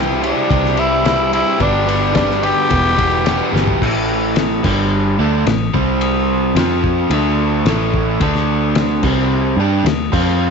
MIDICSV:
0, 0, Header, 1, 5, 480
1, 0, Start_track
1, 0, Key_signature, 0, "minor"
1, 0, Tempo, 550459
1, 1399, Time_signature, 4, 2, 24, 8
1, 9159, End_track
2, 0, Start_track
2, 0, Title_t, "Tenor saxophone"
2, 0, Program_c, 0, 66
2, 225, Note_on_c, 0, 62, 82
2, 694, Note_on_c, 0, 64, 96
2, 707, Note_off_c, 0, 62, 0
2, 1164, Note_off_c, 0, 64, 0
2, 1169, Note_on_c, 0, 64, 88
2, 1388, Note_off_c, 0, 64, 0
2, 1411, Note_on_c, 0, 62, 95
2, 1851, Note_off_c, 0, 62, 0
2, 1885, Note_on_c, 0, 62, 85
2, 2125, Note_on_c, 0, 67, 101
2, 2138, Note_off_c, 0, 62, 0
2, 3082, Note_off_c, 0, 67, 0
2, 9159, End_track
3, 0, Start_track
3, 0, Title_t, "Overdriven electric guitar"
3, 0, Program_c, 1, 29
3, 0, Note_on_c, 1, 48, 93
3, 0, Note_on_c, 1, 55, 100
3, 0, Note_on_c, 1, 60, 94
3, 0, Note_on_c, 1, 64, 109
3, 0, Note_on_c, 1, 67, 109
3, 174, Note_off_c, 1, 48, 0
3, 185, Note_on_c, 1, 48, 85
3, 186, Note_off_c, 1, 55, 0
3, 188, Note_off_c, 1, 60, 0
3, 190, Note_off_c, 1, 64, 0
3, 190, Note_on_c, 1, 55, 76
3, 199, Note_off_c, 1, 67, 0
3, 199, Note_on_c, 1, 60, 90
3, 200, Note_on_c, 1, 64, 94
3, 203, Note_on_c, 1, 67, 85
3, 418, Note_off_c, 1, 48, 0
3, 419, Note_off_c, 1, 55, 0
3, 429, Note_off_c, 1, 60, 0
3, 429, Note_on_c, 1, 48, 86
3, 430, Note_on_c, 1, 55, 83
3, 433, Note_off_c, 1, 64, 0
3, 433, Note_off_c, 1, 67, 0
3, 439, Note_on_c, 1, 60, 97
3, 444, Note_on_c, 1, 64, 92
3, 444, Note_on_c, 1, 67, 86
3, 663, Note_off_c, 1, 48, 0
3, 666, Note_off_c, 1, 55, 0
3, 670, Note_off_c, 1, 60, 0
3, 673, Note_on_c, 1, 48, 96
3, 675, Note_off_c, 1, 64, 0
3, 676, Note_on_c, 1, 55, 90
3, 679, Note_off_c, 1, 67, 0
3, 681, Note_on_c, 1, 60, 105
3, 685, Note_on_c, 1, 64, 105
3, 689, Note_on_c, 1, 67, 98
3, 905, Note_off_c, 1, 48, 0
3, 908, Note_off_c, 1, 55, 0
3, 913, Note_off_c, 1, 60, 0
3, 915, Note_on_c, 1, 48, 88
3, 917, Note_off_c, 1, 64, 0
3, 919, Note_on_c, 1, 55, 93
3, 921, Note_off_c, 1, 67, 0
3, 923, Note_on_c, 1, 60, 88
3, 928, Note_on_c, 1, 64, 96
3, 932, Note_on_c, 1, 67, 99
3, 1153, Note_off_c, 1, 48, 0
3, 1160, Note_off_c, 1, 55, 0
3, 1163, Note_on_c, 1, 48, 86
3, 1164, Note_off_c, 1, 60, 0
3, 1166, Note_off_c, 1, 64, 0
3, 1170, Note_on_c, 1, 55, 84
3, 1174, Note_off_c, 1, 67, 0
3, 1175, Note_on_c, 1, 60, 93
3, 1177, Note_on_c, 1, 64, 90
3, 1184, Note_on_c, 1, 67, 88
3, 1380, Note_off_c, 1, 55, 0
3, 1381, Note_on_c, 1, 43, 96
3, 1382, Note_off_c, 1, 48, 0
3, 1385, Note_on_c, 1, 50, 90
3, 1391, Note_on_c, 1, 55, 96
3, 1392, Note_off_c, 1, 60, 0
3, 1393, Note_off_c, 1, 64, 0
3, 1395, Note_off_c, 1, 67, 0
3, 1399, Note_on_c, 1, 59, 95
3, 1402, Note_on_c, 1, 62, 101
3, 1405, Note_on_c, 1, 67, 110
3, 1612, Note_off_c, 1, 43, 0
3, 1616, Note_off_c, 1, 50, 0
3, 1621, Note_off_c, 1, 55, 0
3, 1623, Note_off_c, 1, 59, 0
3, 1623, Note_on_c, 1, 43, 90
3, 1627, Note_on_c, 1, 50, 79
3, 1629, Note_off_c, 1, 62, 0
3, 1631, Note_on_c, 1, 55, 89
3, 1633, Note_off_c, 1, 67, 0
3, 1634, Note_on_c, 1, 59, 84
3, 1640, Note_on_c, 1, 62, 90
3, 1644, Note_on_c, 1, 67, 102
3, 1844, Note_off_c, 1, 43, 0
3, 1852, Note_off_c, 1, 50, 0
3, 1854, Note_on_c, 1, 43, 90
3, 1859, Note_off_c, 1, 55, 0
3, 1859, Note_off_c, 1, 59, 0
3, 1863, Note_on_c, 1, 50, 96
3, 1869, Note_on_c, 1, 59, 94
3, 1870, Note_on_c, 1, 55, 88
3, 1872, Note_off_c, 1, 67, 0
3, 1873, Note_off_c, 1, 62, 0
3, 1883, Note_on_c, 1, 67, 96
3, 1884, Note_on_c, 1, 62, 102
3, 2105, Note_off_c, 1, 43, 0
3, 2111, Note_off_c, 1, 50, 0
3, 2115, Note_off_c, 1, 55, 0
3, 2115, Note_on_c, 1, 43, 78
3, 2119, Note_off_c, 1, 59, 0
3, 2122, Note_off_c, 1, 62, 0
3, 2122, Note_on_c, 1, 50, 86
3, 2126, Note_on_c, 1, 55, 82
3, 2129, Note_off_c, 1, 67, 0
3, 2130, Note_on_c, 1, 59, 89
3, 2132, Note_on_c, 1, 62, 83
3, 2140, Note_on_c, 1, 67, 94
3, 2338, Note_off_c, 1, 43, 0
3, 2341, Note_on_c, 1, 40, 91
3, 2346, Note_off_c, 1, 50, 0
3, 2348, Note_off_c, 1, 55, 0
3, 2350, Note_off_c, 1, 59, 0
3, 2351, Note_off_c, 1, 62, 0
3, 2351, Note_on_c, 1, 47, 95
3, 2354, Note_on_c, 1, 52, 101
3, 2355, Note_off_c, 1, 67, 0
3, 2358, Note_on_c, 1, 55, 101
3, 2362, Note_on_c, 1, 59, 97
3, 2367, Note_on_c, 1, 67, 100
3, 2573, Note_off_c, 1, 40, 0
3, 2578, Note_off_c, 1, 47, 0
3, 2584, Note_on_c, 1, 40, 80
3, 2585, Note_off_c, 1, 52, 0
3, 2588, Note_on_c, 1, 47, 90
3, 2592, Note_off_c, 1, 55, 0
3, 2592, Note_off_c, 1, 59, 0
3, 2594, Note_off_c, 1, 67, 0
3, 2595, Note_on_c, 1, 52, 105
3, 2602, Note_on_c, 1, 55, 106
3, 2602, Note_on_c, 1, 59, 96
3, 2604, Note_on_c, 1, 67, 110
3, 2817, Note_off_c, 1, 40, 0
3, 2828, Note_on_c, 1, 40, 80
3, 2831, Note_off_c, 1, 47, 0
3, 2834, Note_off_c, 1, 52, 0
3, 2837, Note_off_c, 1, 55, 0
3, 2842, Note_on_c, 1, 47, 80
3, 2844, Note_off_c, 1, 59, 0
3, 2844, Note_on_c, 1, 52, 84
3, 2847, Note_off_c, 1, 67, 0
3, 2847, Note_on_c, 1, 55, 86
3, 2854, Note_on_c, 1, 59, 97
3, 2858, Note_on_c, 1, 67, 96
3, 3058, Note_off_c, 1, 40, 0
3, 3062, Note_off_c, 1, 47, 0
3, 3069, Note_on_c, 1, 40, 88
3, 3070, Note_off_c, 1, 52, 0
3, 3073, Note_on_c, 1, 47, 76
3, 3075, Note_off_c, 1, 55, 0
3, 3078, Note_off_c, 1, 59, 0
3, 3081, Note_on_c, 1, 52, 89
3, 3086, Note_off_c, 1, 67, 0
3, 3086, Note_on_c, 1, 55, 92
3, 3088, Note_on_c, 1, 59, 90
3, 3096, Note_on_c, 1, 67, 89
3, 3299, Note_off_c, 1, 40, 0
3, 3301, Note_off_c, 1, 47, 0
3, 3305, Note_off_c, 1, 52, 0
3, 3308, Note_off_c, 1, 55, 0
3, 3309, Note_off_c, 1, 59, 0
3, 3313, Note_off_c, 1, 67, 0
3, 3324, Note_on_c, 1, 45, 93
3, 3329, Note_on_c, 1, 52, 106
3, 3333, Note_on_c, 1, 57, 91
3, 4034, Note_off_c, 1, 45, 0
3, 4037, Note_off_c, 1, 52, 0
3, 4039, Note_off_c, 1, 57, 0
3, 4040, Note_on_c, 1, 43, 79
3, 4049, Note_on_c, 1, 50, 92
3, 4058, Note_on_c, 1, 55, 99
3, 4512, Note_off_c, 1, 43, 0
3, 4517, Note_off_c, 1, 50, 0
3, 4521, Note_off_c, 1, 55, 0
3, 4530, Note_on_c, 1, 50, 82
3, 4538, Note_on_c, 1, 57, 98
3, 4543, Note_on_c, 1, 62, 99
3, 4757, Note_off_c, 1, 50, 0
3, 4761, Note_off_c, 1, 57, 0
3, 4764, Note_off_c, 1, 62, 0
3, 4771, Note_on_c, 1, 45, 69
3, 4781, Note_on_c, 1, 52, 69
3, 4957, Note_off_c, 1, 45, 0
3, 4962, Note_off_c, 1, 52, 0
3, 5005, Note_on_c, 1, 48, 91
3, 5010, Note_on_c, 1, 55, 95
3, 5018, Note_on_c, 1, 60, 105
3, 5715, Note_off_c, 1, 48, 0
3, 5717, Note_off_c, 1, 55, 0
3, 5721, Note_off_c, 1, 60, 0
3, 5731, Note_on_c, 1, 53, 91
3, 5742, Note_on_c, 1, 60, 92
3, 5748, Note_on_c, 1, 65, 100
3, 6198, Note_off_c, 1, 53, 0
3, 6203, Note_off_c, 1, 60, 0
3, 6207, Note_off_c, 1, 65, 0
3, 6218, Note_on_c, 1, 50, 91
3, 6223, Note_on_c, 1, 57, 96
3, 6226, Note_on_c, 1, 62, 109
3, 6681, Note_off_c, 1, 50, 0
3, 6684, Note_off_c, 1, 57, 0
3, 6685, Note_off_c, 1, 62, 0
3, 6686, Note_on_c, 1, 45, 89
3, 6694, Note_on_c, 1, 52, 95
3, 6704, Note_on_c, 1, 57, 102
3, 7155, Note_off_c, 1, 45, 0
3, 7159, Note_off_c, 1, 52, 0
3, 7160, Note_off_c, 1, 57, 0
3, 7165, Note_on_c, 1, 50, 91
3, 7170, Note_on_c, 1, 57, 95
3, 7175, Note_on_c, 1, 62, 109
3, 7875, Note_off_c, 1, 50, 0
3, 7877, Note_off_c, 1, 57, 0
3, 7880, Note_off_c, 1, 62, 0
3, 7882, Note_on_c, 1, 55, 100
3, 7884, Note_on_c, 1, 48, 91
3, 7894, Note_on_c, 1, 60, 102
3, 8353, Note_off_c, 1, 55, 0
3, 8354, Note_off_c, 1, 48, 0
3, 8359, Note_off_c, 1, 60, 0
3, 8364, Note_on_c, 1, 55, 85
3, 8370, Note_on_c, 1, 62, 97
3, 8378, Note_on_c, 1, 67, 96
3, 8594, Note_off_c, 1, 55, 0
3, 8597, Note_off_c, 1, 62, 0
3, 8597, Note_on_c, 1, 50, 69
3, 8601, Note_off_c, 1, 67, 0
3, 8601, Note_on_c, 1, 57, 69
3, 8790, Note_off_c, 1, 50, 0
3, 8791, Note_off_c, 1, 57, 0
3, 8826, Note_on_c, 1, 53, 88
3, 8831, Note_on_c, 1, 60, 97
3, 8836, Note_on_c, 1, 65, 109
3, 9159, Note_off_c, 1, 53, 0
3, 9159, Note_off_c, 1, 60, 0
3, 9159, Note_off_c, 1, 65, 0
3, 9159, End_track
4, 0, Start_track
4, 0, Title_t, "Fingered electric bass"
4, 0, Program_c, 2, 33
4, 0, Note_on_c, 2, 36, 98
4, 274, Note_off_c, 2, 36, 0
4, 439, Note_on_c, 2, 36, 91
4, 1237, Note_off_c, 2, 36, 0
4, 1394, Note_on_c, 2, 31, 89
4, 2194, Note_off_c, 2, 31, 0
4, 2364, Note_on_c, 2, 28, 93
4, 2961, Note_off_c, 2, 28, 0
4, 3077, Note_on_c, 2, 31, 81
4, 3277, Note_off_c, 2, 31, 0
4, 3327, Note_on_c, 2, 33, 85
4, 4008, Note_off_c, 2, 33, 0
4, 4048, Note_on_c, 2, 31, 98
4, 4490, Note_off_c, 2, 31, 0
4, 4526, Note_on_c, 2, 38, 86
4, 4746, Note_off_c, 2, 38, 0
4, 4760, Note_on_c, 2, 33, 83
4, 4983, Note_off_c, 2, 33, 0
4, 5009, Note_on_c, 2, 36, 92
4, 5689, Note_off_c, 2, 36, 0
4, 5711, Note_on_c, 2, 41, 94
4, 6161, Note_off_c, 2, 41, 0
4, 6191, Note_on_c, 2, 38, 96
4, 6641, Note_off_c, 2, 38, 0
4, 6673, Note_on_c, 2, 33, 89
4, 7122, Note_off_c, 2, 33, 0
4, 7153, Note_on_c, 2, 38, 89
4, 7841, Note_off_c, 2, 38, 0
4, 7872, Note_on_c, 2, 36, 92
4, 8321, Note_off_c, 2, 36, 0
4, 8340, Note_on_c, 2, 43, 90
4, 8572, Note_off_c, 2, 43, 0
4, 8576, Note_on_c, 2, 38, 78
4, 8809, Note_off_c, 2, 38, 0
4, 8832, Note_on_c, 2, 41, 94
4, 9159, Note_off_c, 2, 41, 0
4, 9159, End_track
5, 0, Start_track
5, 0, Title_t, "Drums"
5, 206, Note_on_c, 9, 51, 71
5, 293, Note_off_c, 9, 51, 0
5, 442, Note_on_c, 9, 36, 107
5, 446, Note_on_c, 9, 51, 91
5, 529, Note_off_c, 9, 36, 0
5, 533, Note_off_c, 9, 51, 0
5, 573, Note_on_c, 9, 38, 30
5, 660, Note_off_c, 9, 38, 0
5, 674, Note_on_c, 9, 51, 66
5, 762, Note_off_c, 9, 51, 0
5, 919, Note_on_c, 9, 51, 89
5, 926, Note_on_c, 9, 38, 116
5, 1006, Note_off_c, 9, 51, 0
5, 1013, Note_off_c, 9, 38, 0
5, 1161, Note_on_c, 9, 51, 75
5, 1248, Note_off_c, 9, 51, 0
5, 1397, Note_on_c, 9, 51, 91
5, 1400, Note_on_c, 9, 36, 107
5, 1484, Note_off_c, 9, 51, 0
5, 1487, Note_off_c, 9, 36, 0
5, 1645, Note_on_c, 9, 51, 73
5, 1732, Note_off_c, 9, 51, 0
5, 1873, Note_on_c, 9, 51, 100
5, 1880, Note_on_c, 9, 36, 81
5, 1880, Note_on_c, 9, 38, 113
5, 1960, Note_off_c, 9, 51, 0
5, 1967, Note_off_c, 9, 36, 0
5, 1967, Note_off_c, 9, 38, 0
5, 2011, Note_on_c, 9, 38, 33
5, 2098, Note_off_c, 9, 38, 0
5, 2121, Note_on_c, 9, 51, 75
5, 2208, Note_off_c, 9, 51, 0
5, 2357, Note_on_c, 9, 51, 93
5, 2363, Note_on_c, 9, 36, 115
5, 2445, Note_off_c, 9, 51, 0
5, 2450, Note_off_c, 9, 36, 0
5, 2603, Note_on_c, 9, 36, 76
5, 2603, Note_on_c, 9, 51, 80
5, 2690, Note_off_c, 9, 36, 0
5, 2690, Note_off_c, 9, 51, 0
5, 2842, Note_on_c, 9, 51, 104
5, 2849, Note_on_c, 9, 38, 109
5, 2930, Note_off_c, 9, 51, 0
5, 2937, Note_off_c, 9, 38, 0
5, 3102, Note_on_c, 9, 38, 65
5, 3189, Note_off_c, 9, 38, 0
5, 3204, Note_on_c, 9, 43, 84
5, 3291, Note_off_c, 9, 43, 0
5, 3331, Note_on_c, 9, 36, 110
5, 3338, Note_on_c, 9, 49, 112
5, 3418, Note_off_c, 9, 36, 0
5, 3426, Note_off_c, 9, 49, 0
5, 3803, Note_on_c, 9, 53, 70
5, 3810, Note_on_c, 9, 38, 118
5, 3890, Note_off_c, 9, 53, 0
5, 3897, Note_off_c, 9, 38, 0
5, 4047, Note_on_c, 9, 57, 95
5, 4049, Note_on_c, 9, 36, 104
5, 4134, Note_off_c, 9, 57, 0
5, 4136, Note_off_c, 9, 36, 0
5, 4767, Note_on_c, 9, 53, 66
5, 4774, Note_on_c, 9, 38, 106
5, 4854, Note_off_c, 9, 53, 0
5, 4861, Note_off_c, 9, 38, 0
5, 5007, Note_on_c, 9, 36, 112
5, 5095, Note_off_c, 9, 36, 0
5, 5242, Note_on_c, 9, 53, 74
5, 5329, Note_off_c, 9, 53, 0
5, 5723, Note_on_c, 9, 53, 78
5, 5730, Note_on_c, 9, 38, 111
5, 5810, Note_off_c, 9, 53, 0
5, 5817, Note_off_c, 9, 38, 0
5, 5963, Note_on_c, 9, 36, 87
5, 6050, Note_off_c, 9, 36, 0
5, 6197, Note_on_c, 9, 53, 79
5, 6284, Note_off_c, 9, 53, 0
5, 6678, Note_on_c, 9, 53, 73
5, 6685, Note_on_c, 9, 38, 114
5, 6765, Note_off_c, 9, 53, 0
5, 6772, Note_off_c, 9, 38, 0
5, 6921, Note_on_c, 9, 36, 93
5, 7008, Note_off_c, 9, 36, 0
5, 7156, Note_on_c, 9, 53, 73
5, 7159, Note_on_c, 9, 36, 105
5, 7244, Note_off_c, 9, 53, 0
5, 7246, Note_off_c, 9, 36, 0
5, 7285, Note_on_c, 9, 38, 31
5, 7372, Note_off_c, 9, 38, 0
5, 7633, Note_on_c, 9, 53, 70
5, 7640, Note_on_c, 9, 38, 122
5, 7720, Note_off_c, 9, 53, 0
5, 7727, Note_off_c, 9, 38, 0
5, 7873, Note_on_c, 9, 57, 92
5, 7877, Note_on_c, 9, 36, 102
5, 7960, Note_off_c, 9, 57, 0
5, 7965, Note_off_c, 9, 36, 0
5, 8599, Note_on_c, 9, 53, 68
5, 8606, Note_on_c, 9, 38, 110
5, 8686, Note_off_c, 9, 53, 0
5, 8693, Note_off_c, 9, 38, 0
5, 8835, Note_on_c, 9, 36, 116
5, 8835, Note_on_c, 9, 57, 105
5, 8923, Note_off_c, 9, 36, 0
5, 8923, Note_off_c, 9, 57, 0
5, 9159, End_track
0, 0, End_of_file